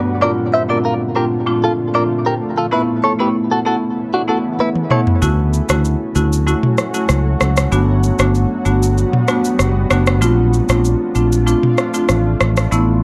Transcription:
Already playing: G2 D3 F#3 G3 A3 B3 D4 F#4
0.21 A#2 F3 A3 C4 D4 F4 A#4 D5
0.54 C5 E5
0.69 A#2 A3 C4 D4 F4 A#4 D5
0.85 F4 A#4
1.15 A#2 A3 C4 D4 F4 G4 A#4
1.46 A#2 A3 C4 D4 F4
1.64 F4 A4
1.94 A#2 A3 C4 D4 F4 A#4 D5
2.26 G4 A#4
2.57 F4 A4
2.71 C#3 E3 A3 B3 C#4 E4 B4
3.04 A4 C#5
3.19 A3 B3 C#4 E4 G4 B4
3.51 F#4 A4
3.65 A3 B3 C#4 E4 F#4 A4
4.14 D4 F#4
4.28 A3 B3 C#4 E4 F#4 A4
4.59 E4 B4, high tom
4.76 mid tom
4.90 A3 B3 C#4 E4 A4 C#5, mid tom
5.07 floor tom
5.21 D2 F#3 A3 C#4 E4 F#4, shaker
5.53 shaker
5.69 D2 A3 C#4 E4 F#4, cross-stick, shaker
5.85 shaker
6.15 D2 A3 C#4 E4 F#4, shaker
6.33 shaker
6.47 A3 C#4 E4 F#4, shaker
6.63 mid tom
6.78 cross-stick, shaker
6.94 A3 C#4 E4 F#4, shaker
7.09 C#2, cross-stick, shaker
7.41 C#2, cross-stick, shaker
7.57 cross-stick, shaker
7.72 G1 G3 A3 B3 D4 F#4, shaker
8.03 shaker
8.19 G1 A3 B3 D4 F#4, cross-stick, shaker
8.35 shaker
8.65 G1 A3 B3 D4 F#4, shaker
8.83 shaker
8.98 shaker
9.13 mid tom
9.28 A3 B3 D4 F#4, cross-stick, shaker
9.44 shaker
9.59 F#1, cross-stick, shaker
9.90 F#1 A3 B3 D4 F#4, cross-stick, shaker
10.07 cross-stick, shaker
10.21 A#1 F3 A3 C4 D4 F4, shaker
10.53 shaker
10.69 A#1 A3 C4 D4 F4, cross-stick, shaker
10.85 shaker
11.15 A#1 A3 C4 D4 F4, shaker
11.32 shaker
11.46 A3 C4 D4 F4, shaker
11.63 mid tom
11.78 cross-stick, shaker
11.94 A3 C4 D4 F4, shaker
12.09 A1, cross-stick, shaker
12.41 A1, cross-stick, shaker
12.57 cross-stick, shaker
12.71 A1 C#3 E3 A3 B3 C#4 E4, shaker

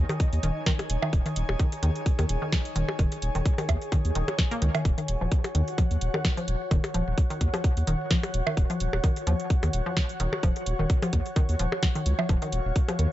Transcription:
Already playing: D#4 C#5 D#5 G#5
0.09 D#3, closed hi-hat, percussion blips
0.20 kick, closed hi-hat
0.33 D#2, closed hi-hat
0.43 D#1 D#3, closed hi-hat
0.66 D#3, kick, snare, closed hi-hat
0.79 closed hi-hat, percussion blips
0.90 D#1, closed hi-hat
1.02 D#3, percussion blips
1.13 D#1 G#4, kick, closed hi-hat
1.26 D#3, closed hi-hat
1.36 D#1, closed hi-hat
1.49 D#1, percussion blips
1.59 D#3, kick, closed hi-hat
1.72 closed hi-hat
1.83 D#2 D#3, closed hi-hat
1.96 closed hi-hat
2.06 kick, closed hi-hat
2.19 D#2 D#3, closed hi-hat, percussion blips
2.29 D#1, closed hi-hat
2.42 D#3
2.52 kick, snare, closed hi-hat
2.65 closed hi-hat
2.76 D#1 D#3, closed hi-hat
2.89 percussion blips
2.99 D#1 D#3, kick, closed hi-hat
3.12 closed hi-hat
3.22 D#1, closed hi-hat
3.35 D#1 D#3, closed hi-hat
3.46 kick, closed hi-hat
3.58 D#3, closed hi-hat, percussion blips
3.69 D#2, kick, closed hi-hat, percussion blips
3.82 closed hi-hat
3.92 D#3, kick, closed hi-hat
4.05 D#2, closed hi-hat
4.15 D#1 D#3, closed hi-hat
4.28 closed hi-hat, percussion blips
4.39 kick, snare, closed hi-hat
4.51 A#3, closed hi-hat
4.62 C#2 D#3, closed hi-hat
4.75 D#3, closed hi-hat, percussion blips
4.85 D#1 F#4 F#5, kick, closed hi-hat
4.98 D#3, closed hi-hat
5.08 D#1, closed hi-hat
5.21 D#1 F3
5.32 F#5, kick, closed hi-hat
5.44 closed hi-hat, percussion blips
5.55 D#2 D#3, closed hi-hat
5.68 closed hi-hat
5.78 F3, kick, closed hi-hat
5.91 D#2, closed hi-hat
6.01 D#1, closed hi-hat
6.14 D#3, percussion blips
6.25 kick, snare, closed hi-hat
6.37 F3, closed hi-hat
6.48 D#1, closed hi-hat
6.71 D#1 D#3, kick, closed hi-hat
6.84 closed hi-hat, percussion blips
6.94 D#1 F3, closed hi-hat
7.07 D#1
7.18 kick, closed hi-hat
7.30 D#3, closed hi-hat
7.41 D#2, kick, closed hi-hat
7.54 F3, closed hi-hat, percussion blips
7.64 kick, closed hi-hat
7.77 D#2, closed hi-hat
7.87 D#1 D#3, closed hi-hat
8.11 F3, kick, snare, closed hi-hat
8.23 closed hi-hat, percussion blips
8.34 D#1, closed hi-hat
8.47 D#3, percussion blips
8.57 D#1, kick, closed hi-hat
8.70 F3, closed hi-hat
8.80 D#1, closed hi-hat
8.93 D#1, percussion blips
9.04 D#3, kick, closed hi-hat
9.16 closed hi-hat
9.27 D#2 F3, closed hi-hat
9.40 closed hi-hat
9.50 kick, closed hi-hat
9.63 D#2 D#3, closed hi-hat, percussion blips
9.73 D#1, closed hi-hat
9.86 F3
9.97 kick, snare, closed hi-hat
10.09 closed hi-hat
10.20 D#1 D#3, closed hi-hat
10.33 percussion blips
10.43 D#1 F3, kick, closed hi-hat
10.56 closed hi-hat
10.66 D#1, closed hi-hat
10.79 D#1 D#3
10.90 kick, closed hi-hat
11.02 F3, closed hi-hat, percussion blips
11.13 D#2, kick, closed hi-hat
11.26 closed hi-hat
11.36 D#3, kick, closed hi-hat
11.49 D#2, closed hi-hat
11.59 D#1 F3, closed hi-hat
11.72 percussion blips
11.83 kick, snare, closed hi-hat
11.95 D#3, closed hi-hat
12.06 C#2, closed hi-hat
12.19 F3, percussion blips
12.29 D#1 F3 F5, kick, closed hi-hat
12.42 D#3, closed hi-hat
12.52 D#1, closed hi-hat
12.65 D#1
12.76 kick, closed hi-hat
12.88 F3, closed hi-hat, percussion blips
12.99 D#2 D#3, closed hi-hat

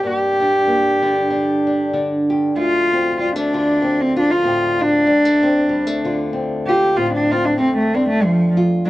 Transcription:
Already playing: D4
0.03 G2 A#3 G4
0.40 D4
0.67 A#3
1.02 D3 D4
1.30 D4
1.67 D4
1.93 D3 D4
2.30 G4
2.56 D2 A3 F4
2.92 C4
3.19 G3 F4
3.36 A3 D4
3.54 D3 F4
3.82 C4
4.02 C4
4.16 D4 F4
4.32 F4
4.43 A2 C4
4.79 D4 F4
5.06 D2 G3
5.25 A3
5.43 C4
5.69 G3
5.87 A3
6.04 D3 F4
6.33 C4
6.67 F4 G4
6.96 A2 C4 F4
7.14 D4
7.32 C4 F4
7.45 D4
7.58 F2 A3 C4
7.78 A3
7.95 C4 D4
8.09 A3
8.22 F3 A3
8.57 F4
8.85 G3 D4

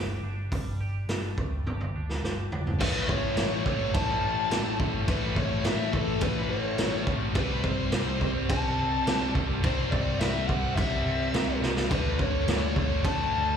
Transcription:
Already playing: G1 A3 D4 G4
0.22 G1 D4
0.52 G1 G3, kick, open hi-hat
0.79 G1 G4
1.08 G1 D4, snare, open hi-hat
1.38 D2 A3, kick
1.66 G1 G4, high tom
1.81 high tom
1.94 D2 D4
2.09 snare
2.22 G1 G4, snare
2.52 G1 D4, floor tom
2.67 floor tom
2.80 A1 A2 E3 A3 A4 B4 C#5 E5, kick, crash
3.08 C#5, kick
3.36 A1 A2 E3 A3, snare, crash
3.66 A1 A2 E3 A3 C#5, kick
3.94 A1 A2 E3 A3 A5, kick, crash
4.23 A1
4.50 A1 A2 E3 A3, snare, crash
4.79 A1 A2 E3 A3, kick
5.08 A1 A2 E3 A3 B4, kick, crash
5.36 A1 C#5, kick
5.51 C#5
5.64 A1 A2 E3 A3 E5, snare, crash
5.93 A1 A2 E3 A3 A4, kick
6.21 A1 A2 E3 A3 B4, kick, crash
6.50 A1 C#5
6.78 A1 A2 E3 A3, snare, crash
7.07 A1 A2 E3 A3, kick
7.35 C2 C3 G3 C4 G4 B4, kick, crash
7.64 C5, kick
7.92 C2 C3 G3 C4, snare, crash
8.21 C2 C3 G3 C4 C5, kick
8.49 C2 C3 G3 C4 A5, kick, crash
8.78 C2
9.06 C2 C3 G3 C4, snare, crash
9.35 C2 C3 G3 C4, kick
9.63 C2 C3 G3 C4 C5, kick, crash
9.91 C2 D5, kick
10.19 C2 C3 G3 C4 E5, snare, crash
10.48 C2 C3 G3 C4 F#5, kick
10.75 C2 C3 G3 C4 E5, kick, crash
11.05 C2
11.34 C2 C3 G3 C4, snare, crash
11.62 C2 C3 G3 C4, snare
11.76 snare
11.90 D2 D3 A3 D4 A4 B4 F#5, kick, crash
12.19 C#5, kick
12.47 D2 D3 A3 D4, snare, crash
12.76 D2 D3 A3 D4 C#5, kick
13.04 D2 D3 A3 D4 A5, kick, crash
13.32 D2

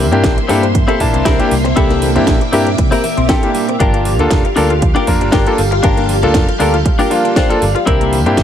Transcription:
Already playing: C2 A#3 E5 C6
0.12 G2 A#3 C4 D4 E4 G4, closed hi-hat
0.24 A#1 E3, kick, snare, closed hi-hat
0.37 E4, muted clean electric guitar stroke, closed hi-hat
0.48 G2 G3 A#3 C4 D4 E4 G4 A4, snare, open hi-hat
0.63 C4, closed hi-hat
0.74 E3, muted clean electric guitar stroke, kick, closed hi-hat
0.88 A#3 C4 E4 G4 A4, closed hi-hat
1.00 A#2 E3 A#3 D4 E4 A5, kick, open hi-hat
1.13 C2 C4, muted clean electric guitar stroke, closed hi-hat
1.25 C2 E3 C4 E4 G4 A#4, kick, snare, closed hi-hat
1.39 A#3 D4 E4 G4, closed hi-hat
1.51 C2 G3, open hi-hat
1.64 C4, muted clean electric guitar stroke, closed hi-hat
1.76 E3 A#3 C4 D4 E4 G4 A4 D6, kick, closed hi-hat
1.90 A#3, snare, closed hi-hat
2.02 E3, open hi-hat
2.15 G2 A#3 C4 D4 E4 G4, closed hi-hat
2.27 A#1 E3, kick, snare, closed hi-hat
2.41 E4, muted clean electric guitar stroke, closed hi-hat
2.52 G2 G3 A#3 C4 D4 E4 G4 A#4, open hi-hat
2.66 C4, closed hi-hat
2.78 C3 E3, muted clean electric guitar stroke, kick, closed hi-hat
2.91 A#3 C4 E4 G4 A#4, open hi-hat
3.04 E3 E5, open hi-hat
3.17 A#1 C4, muted clean electric guitar stroke, closed hi-hat
3.29 E3 C4 E4 G4 A4 G5, kick, snare, closed hi-hat
3.43 A#3 D4 E4 G4, closed hi-hat
3.55 G3, open hi-hat
3.68 C4, muted clean electric guitar stroke, closed hi-hat
3.80 G1 F3 A#3 D4 F4 G4 A#4 F5 A5, kick, closed hi-hat
3.94 A#3, closed hi-hat
4.05 F3, open hi-hat
4.19 D2 A#3 D4 F4 A4, closed hi-hat
4.30 F1 F3, kick, snare, closed hi-hat
4.45 F4, muted clean electric guitar stroke, closed hi-hat
4.56 D2 G3 A#3 D4 F4 G4 A4 A#4, snare, open hi-hat
4.70 F4, closed hi-hat
4.82 F3, muted clean electric guitar stroke, kick, closed hi-hat
4.95 A#3 D4 F4 G4 A#4, closed hi-hat
5.07 F2 F3 A#3 D4 F4 A#4, kick, open hi-hat
5.20 G1 D4, muted clean electric guitar stroke, closed hi-hat
5.32 G1 F3 D4 F4 G4 A#4, kick, snare, closed hi-hat
5.46 A#3 D4 F4 A4, closed hi-hat
5.58 G1 G3, open hi-hat
5.71 F4, muted clean electric guitar stroke, closed hi-hat
5.83 G1 F3 A#3 D4 F4 G4 A#4 A5, kick, closed hi-hat
5.97 A#3, snare, closed hi-hat
6.09 F3, open hi-hat
6.23 D2 A#3 D4 F4 A4, closed hi-hat
6.34 F1 F3, kick, snare, closed hi-hat
6.48 F4, muted clean electric guitar stroke, closed hi-hat
6.60 D2 G3 A#3 D4 F4 G4 A4 A#4, open hi-hat
6.74 F4, closed hi-hat
6.85 F3, muted clean electric guitar stroke, kick, closed hi-hat
6.99 A#3 D4 F4 G4 A#4, open hi-hat
7.10 F3 A#3 D4 F4 F5, open hi-hat
7.24 D4, muted clean electric guitar stroke, closed hi-hat
7.36 F3 D4 F4 G4 C5 D5, kick, snare, closed hi-hat
7.49 A#3 D4 F4 A4, closed hi-hat
7.62 G1 G3, open hi-hat
7.75 F4, muted clean electric guitar stroke, closed hi-hat
7.86 C2 E3 A#3 C4 D4 E4 G4 A#4 E5 C6, kick, closed hi-hat
8.01 A#3, closed hi-hat
8.12 E3, open hi-hat
8.26 G2 A#3 C4 D4 E4 G4, closed hi-hat
8.37 A#1 E3, kick, snare, closed hi-hat

